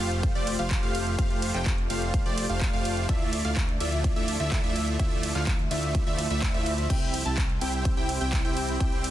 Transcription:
Already playing: A3 F4 G4 C5
0.00 F1 A3 F4 G4 C5 F5
0.11 closed hi-hat
0.23 kick, closed hi-hat, ride
0.35 F1 A3 F4 G4 C5 D5, closed hi-hat
0.47 open hi-hat, ride
0.59 F1 A3 F4 G4 C5 F5
0.71 kick, clap, closed hi-hat, ride
0.83 F1 A3 F4 G4 C5 F5, closed hi-hat
0.95 open hi-hat, ride
1.07 closed hi-hat
1.19 F4 G4 C5 D5 F5, kick, closed hi-hat, ride
1.30 closed hi-hat
1.42 open hi-hat, ride
1.54 F1 A3 F4 G4 C5 G5, clap, closed hi-hat
1.66 kick, clap, closed hi-hat, ride
1.78 closed hi-hat
1.90 F1 A3 F4 G4 C5 F5, open hi-hat, ride
2.02 closed hi-hat
2.14 kick, closed hi-hat, ride
2.26 F1 A3 F4 G4 C5 D5, closed hi-hat
2.38 open hi-hat, ride
2.49 F1 A3 F4 G4 C5 F5, closed hi-hat
2.61 kick, clap, closed hi-hat, ride
2.73 F1 A3 F4 G4 C5 F5, closed hi-hat
2.85 open hi-hat, ride
2.97 closed hi-hat
3.09 D2 F3 A3 E4 F4 D5 E5, kick, closed hi-hat, ride
3.33 open hi-hat, ride
3.45 D2 A3 E4 F4 D5 F5, closed hi-hat
3.57 kick, clap, closed hi-hat, ride
3.69 closed hi-hat
3.80 D2 A3 E4 F4 D5 E5, open hi-hat, ride
3.92 closed hi-hat
4.04 kick, closed hi-hat, ride
4.16 D2 A3 E4 F4 D5 E5, closed hi-hat
4.28 open hi-hat, ride
4.40 D2 A3 E4 F4 D5 E5, closed hi-hat
4.52 kick, clap, closed hi-hat, ride
4.64 D2 A3 E4 F4 D5 E5, closed hi-hat
4.76 open hi-hat, ride
4.88 closed hi-hat
4.99 A3 E4 F4 D5 E5, kick, closed hi-hat, ride
5.11 closed hi-hat
5.23 open hi-hat, ride
5.35 D2 A3 E4 F4 D5 F5, clap, closed hi-hat
5.47 kick, clap, closed hi-hat, ride
5.59 closed hi-hat
5.71 D2 A3 E4 F4 D5 E5, open hi-hat, ride
5.83 closed hi-hat
5.95 kick, closed hi-hat, ride, swell
6.07 D2 A3 E4 F4 D5 E5, closed hi-hat
6.19 open hi-hat, ride
6.30 D2 A3 E4 F4 D5 E5, closed hi-hat
6.42 kick, clap, closed hi-hat, ride
6.54 D2 A3 E4 F4 D5 E5, closed hi-hat
6.66 open hi-hat, ride
6.78 closed hi-hat
6.90 G3 C4 E4 G4 C5 E5 G5, kick, closed hi-hat, crash, ride
7.14 open hi-hat, ride
7.26 C2 C4 E4 G4 E5 A5, closed hi-hat
7.38 kick, clap, closed hi-hat, ride
7.50 closed hi-hat
7.61 C2 C4 E4 G4 E5 G5, open hi-hat, ride
7.73 closed hi-hat
7.85 kick, closed hi-hat, ride
7.97 C2 C4 E4 G4 E5 G5, closed hi-hat
8.09 open hi-hat, ride
8.21 C2 C4 E4 G4 E5 G5, closed hi-hat
8.33 kick, clap, closed hi-hat, ride
8.45 C2 C4 E4 G4 E5 G5, closed hi-hat
8.57 open hi-hat, ride
8.69 closed hi-hat
8.80 C4 E4 G4 E5 G5, kick, closed hi-hat, ride
8.92 closed hi-hat
9.04 open hi-hat, ride

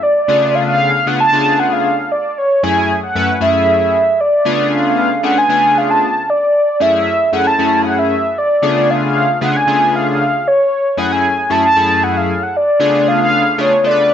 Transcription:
0.03 D5
0.28 C#3 A3 B3 D4 F4 G#4
0.55 F5
0.68 F5
1.06 C#3 A3 B3 D4 F4 G#4 F#5
1.20 A5
1.32 C#3 A3 B3 D4 F4 G#4
1.59 F#5
1.73 F5
2.12 D5
2.38 C#5
2.63 F#2 A3 C#4 E4 G#4 G#5
3.03 F#5
3.15 F#2 A3 C#4 E4 B4
3.40 F#2 A3 C#4 E4 G#4 E5
4.21 D5
4.45 C#3 A3 B3 D4 F4 G#4
4.73 F5
4.86 F5
5.23 C#3 A3 B3 D4 F4 G#4 F#5
5.38 G#5
5.49 C#3 A3 B3 D4 F4 G#4
5.78 F5
5.90 A5
6.30 D5
6.80 F#2 A3 C#4 E4 G#4 E5
6.95 E5
7.32 F#2 A3 C#4 E4 G#4 F#5
7.47 A5
7.59 F#2 A3 C#4 E4 G#4
7.82 F5 F#5
7.99 E5
8.38 D5
8.62 C#3 A3 B3 D4 F4 G#4
8.90 F5
9.04 F5
9.41 C#3 A3 B3 D4 F4 G#4 F#5
9.57 G#5
9.67 C#3 A3 B3 D4 F4 G#4
9.96 F5
10.08 F5
10.48 C#5
10.97 F#2 A3 C#4 E4 G#4 F#5
11.12 G#5
11.50 F#2 A3 C#4 E4 G#4 A5
11.65 A5
11.76 F#2 A3 C#4 E4 G#4
12.04 F#5
12.17 F5
12.43 F#5
12.57 D5
12.80 C#3 A3 B3 D4 F4 G#4
13.08 F5
13.22 F5
13.58 C#3 A3 B3 D4 F4 G#4 C#5
13.84 C#3 A3 B3 D4 F4 A4 D5
13.91 B4

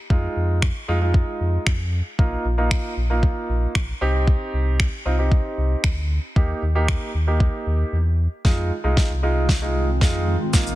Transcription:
0.10 F2 G#3 D#4 F4, kick
0.36 F2
0.62 finger snap, kick
0.88 F2 G#3 D#4 F4
1.01 G#3 D#4 F4
1.14 kick
1.41 F2
1.67 F2, finger snap, kick
2.19 A#1 A#3 D#4 F4, kick
2.45 A#1
2.58 A#3 D#4 F4
2.71 finger snap, kick
2.97 A#1
3.10 A#3 D#4 F4
3.23 kick
3.49 A#1
3.75 A#1, finger snap, kick
4.01 C2 C4 D#4 G4
4.27 kick
4.53 C2
4.80 finger snap, kick
5.05 C2 C4 D#4 F4
5.18 C4 D#4 G4
5.32 kick
5.58 C2
5.84 D2, finger snap, kick
6.36 D#2 A#3 D#4 G4, kick
6.62 D#2
6.75 A#3 D#4 G4
6.88 finger snap, kick
7.14 D#2
7.27 A#3 D#4 G4
7.40 kick
7.66 D#2
7.93 E2
8.45 F2 D#3 G#3 C4 D#4 F4, kick, snare
8.84 C2 G#3 D#4 F4
8.97 kick, snare
9.10 C2
9.23 G#3 D#4 F4
9.49 kick, snare
9.62 G#3 D#4 F4
10.01 F2 G#3 D#4 F4, kick, snare
10.53 A#1 A#3 D#4 F4, kick, snare, shaker
10.67 shaker

